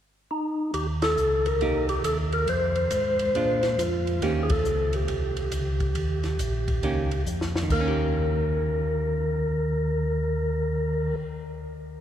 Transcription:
0.31 0.71 D#4 medium
0.73 1.16 D#2 medium
0.73 0.87 G4 medium
0.73 ride medium
1.02 1.47 A4 loud
1.02 snare medium
1.02 ride medium
1.17 1.60 C#2 medium
1.17 hi-hat pedal medium
1.46 1.87 A#4 medium
1.46 ride soft
1.60 2.03 C2 medium
1.60 1.87 A#3 soft
1.60 1.87 D#4 medium
1.60 1.87 G4 medium
1.60 ride soft
1.89 2.04 G4 medium
1.89 ride soft
2.03 2.46 D#2 medium
2.03 2.17 A4 medium
2.03 hi-hat pedal medium
2.03 ride medium
2.32 2.49 A#4 medium
2.32 ride soft
2.47 2.90 F2 medium
2.47 3.83 C5 loud
2.47 ride medium
2.75 ride soft
2.91 3.33 G#2 medium
2.91 hi-hat pedal medium
2.91 ride medium
3.19 ride soft
3.34 3.77 A#2 medium
3.34 3.61 G#3 soft
3.34 3.61 D4 medium
3.34 3.61 F4 medium
3.34 ride soft
3.63 snare soft
3.63 ride soft
3.78 4.20 F2 medium
3.78 4.23 F4 medium
3.78 hi-hat pedal medium
3.78 ride medium
4.07 ride soft
4.21 4.64 D#2 medium
4.21 4.48 D#3 medium
4.21 4.48 A#3 medium
4.21 4.48 C#4 medium
4.21 4.42 G4 loud
4.21 4.48 G4 medium
4.21 ride medium
4.43 4.51 G#4 medium
4.50 4.95 A4 medium
4.50 kick medium
4.50 ride medium
4.65 5.07 C#2 medium
4.65 hi-hat pedal medium
4.93 7.23 G4 medium
4.93 ride soft
5.08 5.51 C2 medium
5.08 ride medium
5.37 ride soft
5.52 5.94 C#2 medium
5.52 hi-hat pedal medium
5.52 ride medium
5.80 kick soft
5.80 ride soft
5.95 6.38 D#2 medium
5.95 ride medium
6.23 snare soft
6.23 ride soft
6.39 6.81 A#1 medium
6.39 hi-hat pedal medium
6.39 ride medium
6.68 kick medium
6.68 ride soft
6.82 7.25 C#2 medium
6.82 7.09 D#3 soft
6.82 7.09 A#3 soft
6.82 7.09 C#4 medium
6.82 7.09 G4 medium
6.82 ride medium
7.11 ride soft
7.26 7.69 F2 medium
7.26 hi-hat pedal medium
7.41 snare soft
7.56 snare medium
7.63 11.11 D#3 medium
7.70 11.14 D#2 medium
7.70 11.20 A#3 medium
7.70 11.16 A#4 medium
7.70 kick medium
7.70 crash medium
7.81 11.28 C#4 medium
7.88 11.36 G4 medium
7.98 cymbal swell soft

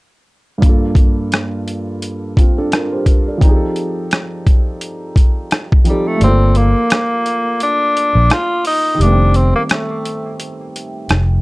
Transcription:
0.58 3.35 G2 medium
0.58 3.37 A#3 medium
0.62 2.34 D4 soft
0.62 2.35 F4 medium
0.62 kick medium
0.62 closed hi-hat medium
0.69 2.37 A4 medium
0.95 kick medium
0.95 closed hi-hat medium
1.32 cross-stick medium
1.32 closed hi-hat medium
1.68 closed hi-hat medium
2.02 closed hi-hat medium
2.37 2.57 C4 soft
2.37 2.56 F4 medium
2.37 kick medium
2.37 closed hi-hat medium
2.58 2.72 D4 medium
2.58 2.72 A4 medium
2.72 2.92 F4 medium
2.72 2.91 A#4 medium
2.72 cross-stick medium
2.72 closed hi-hat medium
2.92 3.26 G4 medium
2.92 3.25 C5 medium
3.06 kick medium
3.06 closed hi-hat medium
3.28 3.54 A4 soft
3.28 3.60 D5 soft
3.37 5.80 F3 medium
3.37 5.81 C4 medium
3.37 kick loud
3.42 5.83 D#4 medium
3.42 5.84 G4 medium
3.42 closed hi-hat medium
3.49 3.53 G#4 medium
3.55 5.89 A4 medium
3.76 closed hi-hat medium
4.11 cross-stick medium
4.11 closed hi-hat medium
4.47 kick medium
4.47 closed hi-hat medium
4.81 closed hi-hat medium
5.16 kick medium
5.16 closed hi-hat medium
5.51 cross-stick medium
5.51 closed hi-hat medium
5.72 kick medium
5.84 6.20 F3 medium
5.84 6.21 C4 soft
5.84 6.21 D#4 soft
5.84 closed hi-hat medium
5.89 6.09 G3 medium
5.89 6.22 G4 soft
5.89 6.23 A4 medium
6.08 6.22 A3 medium
6.16 6.26 A3 medium
6.16 8.96 D5 medium
6.21 6.73 G1 loud
6.21 8.97 A#3 medium
6.21 6.59 C4 medium
6.21 8.98 F4 medium
6.21 closed hi-hat medium
6.28 9.00 A4 medium
6.55 7.61 A#3 medium
6.55 closed hi-hat medium
6.90 cross-stick loud
6.90 closed hi-hat medium
7.26 closed hi-hat medium
7.60 8.34 D4 loud
7.60 closed hi-hat medium
7.97 closed hi-hat medium
8.15 8.29 A#1 medium
8.30 8.66 F4 loud
8.30 cross-stick loud
8.30 closed hi-hat medium
8.65 9.03 D#4 loud
8.65 open hi-hat soft
8.95 11.42 D#3 medium
8.95 11.42 G3 medium
9.00 9.51 F1 loud
9.00 11.42 A3 medium
9.00 9.38 D4 loud
9.00 closed hi-hat medium
9.06 9.10 B3 medium
9.12 11.42 C4 medium
9.34 9.55 C4 medium
9.34 closed hi-hat medium
9.56 9.62 A#3 medium
9.69 10.36 A3 medium
9.69 cross-stick loud
9.69 closed hi-hat medium
10.05 closed hi-hat medium
10.40 closed hi-hat medium
10.76 closed hi-hat medium
11.09 11.42 F1 medium
11.09 cross-stick loud
11.09 closed hi-hat medium

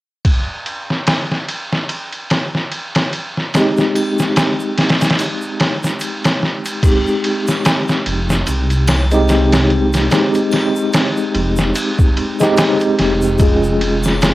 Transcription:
0.25 kick medium
0.25 ride medium
0.66 ride medium
0.90 snare soft
1.07 snare loud
1.07 ride medium
1.32 snare soft
1.48 ride medium
1.73 snare soft
1.89 ride medium
2.12 ride soft
2.30 snare medium
2.30 ride medium
2.55 snare soft
2.72 ride soft
2.95 snare medium
2.95 ride medium
3.13 ride medium
3.37 snare soft
3.54 6.76 G#3 medium
3.54 6.76 C4 medium
3.54 6.77 D#4 medium
3.54 6.77 G4 medium
3.54 snare medium
3.54 ride medium
3.54 shaker soft
3.77 snare soft
3.77 shaker soft
3.95 ride soft
3.95 triangle medium
4.19 snare soft
4.19 shaker medium
4.36 snare loud
4.36 ride medium
4.36 shaker medium
4.60 shaker soft
4.77 snare medium
4.77 ride medium
4.89 snare medium
4.89 ride medium
5.01 snare medium
5.01 ride medium
5.01 shaker medium
5.10 snare medium
5.10 ride medium
5.19 ride medium
5.19 shaker medium
5.42 shaker soft
5.60 snare medium
5.60 ride medium
5.83 snare soft
5.83 shaker medium
6.00 ride medium
6.00 shaker medium
6.25 snare loud
6.25 ride medium
6.25 shaker soft
6.43 snare soft
6.65 ride medium
6.65 shaker medium
6.83 9.06 G#3 medium
6.83 9.07 C4 medium
6.83 9.07 D#4 medium
6.83 9.08 G4 medium
6.83 kick loud
6.83 crash medium
6.83 ride medium
6.83 shaker medium
7.07 shaker soft
7.24 ride medium
7.48 snare soft
7.48 triangle medium
7.48 shaker medium
7.65 snare loud
7.65 ride medium
7.65 shaker medium
7.88 snare soft
7.88 shaker soft
8.06 8.43 F1 loud
8.06 ride medium
8.30 snare medium
8.30 shaker medium
8.47 10.09 C2 medium
8.47 ride medium
8.47 shaker medium
8.70 ride soft
8.70 shaker soft
8.87 snare loud
8.87 ride medium
8.87 triangle medium
9.11 10.07 G#3 medium
9.11 10.08 C4 medium
9.11 10.08 D#4 medium
9.11 10.09 G4 medium
9.11 ride soft
9.11 shaker medium
9.28 snare soft
9.28 ride medium
9.28 shaker medium
9.52 snare loud
9.52 ride medium
9.52 shaker soft
9.70 ride soft
9.93 snare soft
9.93 ride medium
9.93 shaker medium
10.11 12.34 G#3 medium
10.11 12.35 C4 medium
10.11 12.35 D#4 medium
10.11 12.36 G4 medium
10.11 snare loud
10.11 ride medium
10.11 shaker medium
10.34 ride soft
10.34 shaker soft
10.51 snare soft
10.51 ride medium
10.51 triangle medium
10.76 shaker medium
10.93 snare loud
10.93 ride medium
10.93 shaker medium
11.17 shaker soft
11.35 11.72 F1 loud
11.35 ride medium
11.56 snare soft
11.56 shaker medium
11.75 ride medium
11.75 shaker medium
11.99 kick loud
11.99 shaker soft
12.17 ride medium
12.40 13.36 G#3 medium
12.40 13.37 C4 medium
12.40 13.37 D#4 medium
12.40 13.37 G4 loud
12.40 snare soft
12.40 shaker medium
12.57 snare loud
12.57 ride medium
12.57 shaker medium
12.80 ride soft
12.80 shaker soft
12.99 14.34 F1 medium
12.99 snare soft
12.99 ride medium
13.22 shaker medium
13.38 14.34 G#3 medium
13.38 14.34 C#4 medium
13.38 14.34 F4 medium
13.38 14.34 G#4 medium
13.38 kick loud
13.38 ride medium
13.38 shaker medium
13.63 shaker soft
13.81 ride medium
14.03 snare soft
14.03 triangle medium
14.03 shaker medium
14.21 snare loud
14.21 ride medium
14.21 shaker medium

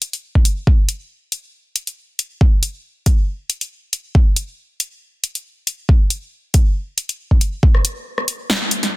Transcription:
0.02 closed hi-hat medium
0.13 closed hi-hat soft
0.35 kick medium
0.45 closed hi-hat medium
0.67 kick loud
0.89 closed hi-hat medium
1.32 closed hi-hat medium
1.76 closed hi-hat medium
1.87 closed hi-hat soft
2.19 closed hi-hat medium
2.41 kick loud
2.63 closed hi-hat medium
3.06 kick medium
3.06 closed hi-hat medium
3.50 closed hi-hat medium
3.61 closed hi-hat soft
3.93 closed hi-hat medium
4.15 kick loud
4.36 closed hi-hat medium
4.80 closed hi-hat medium
5.24 closed hi-hat medium
5.35 closed hi-hat soft
5.67 closed hi-hat medium
5.89 kick loud
6.10 closed hi-hat medium
6.54 kick medium
6.54 closed hi-hat medium
6.98 closed hi-hat medium
7.09 closed hi-hat soft
7.31 kick medium
7.41 closed hi-hat medium
7.63 kick loud
7.75 cross-stick medium
7.85 closed hi-hat medium
8.18 cross-stick medium
8.28 closed hi-hat medium
8.50 snare loud
8.71 closed hi-hat medium
8.83 snare soft
8.83 closed hi-hat soft

